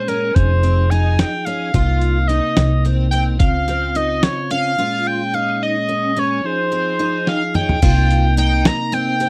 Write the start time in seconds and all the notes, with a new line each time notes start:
Already playing: A#2 G#3 C#4
0.08 C#4 A#4, closed hi-hat
0.34 F1 F3 D#4 G#4 C5, kick, closed hi-hat
0.63 C4, closed hi-hat
0.90 D#4 G#5, closed hi-hat
1.19 G5, snare, closed hi-hat
1.45 C#4 F5, closed hi-hat
1.74 C2 C3 A#3 D#4 F4, kick, closed hi-hat
2.01 closed hi-hat
2.27 D#4 D#5, snare, closed hi-hat
2.57 C2, snare, closed hi-hat
2.85 C4, closed hi-hat
3.11 C4 G5, closed hi-hat
3.39 C#2 C#3 C4 F4 F5, kick, closed hi-hat
3.68 C4, snare, closed hi-hat
3.95 D#4 D#5, closed hi-hat
4.23 C#5, snare, closed hi-hat
4.51 C#4 F5, closed hi-hat
4.78 A#2 G#3 C#4 F4
5.07 G5
5.34 D#4 F5
5.63 D#5
5.89 C#4
6.17 C#4 C#5
6.44 F3 D#4 G#4 C5
6.72 C4
6.99 D#4
7.27 F5 G5, snare
7.42 F5
7.54 C#4 D#5 G5, mid tom
7.69 floor tom
7.82 C2 C3 A#3 D#4 F4, kick, closed hi-hat, crash
8.11 closed hi-hat
8.37 D#4 G5, closed hi-hat
8.65 A#5, snare, closed hi-hat
8.92 C4 G5, closed hi-hat
9.20 C4, closed hi-hat